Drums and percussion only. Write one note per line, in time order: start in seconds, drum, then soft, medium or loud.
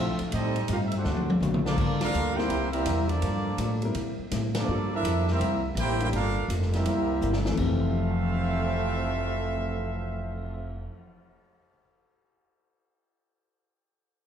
0.19 ride medium
0.32 ride medium
0.56 ride medium
0.68 hi-hat pedal medium
0.68 ride medium
0.92 ride medium
1.04 snare medium
1.17 high tom medium
1.30 high tom medium
1.42 hi-hat pedal medium
1.42 mid tom medium
1.54 mid tom medium
1.66 snare loud
1.78 kick medium
1.78 snare soft
1.78 crash medium
2.01 snare medium
2.01 ride medium
2.13 hi-hat pedal medium
2.38 snare soft
2.50 ride medium
2.73 ride medium
2.86 hi-hat pedal medium
2.86 ride medium
3.09 ride medium
3.22 ride medium
3.58 hi-hat pedal medium
3.58 ride medium
3.82 ride medium
3.95 ride medium
4.31 snare soft
4.31 hi-hat pedal medium
4.31 ride medium
4.55 snare loud
4.55 ride medium
5.05 hi-hat pedal medium
5.05 ride medium
5.28 snare soft
5.41 ride medium
5.77 hi-hat pedal medium
5.77 ride medium
6.00 ride medium
6.13 ride medium
6.50 hi-hat pedal medium
6.50 ride medium
6.62 snare soft
6.73 snare soft
6.73 ride medium
6.86 ride medium
7.22 hi-hat pedal medium
7.33 snare medium
7.46 snare loud
7.57 kick medium
7.57 crash medium
7.80 cymbal swell soft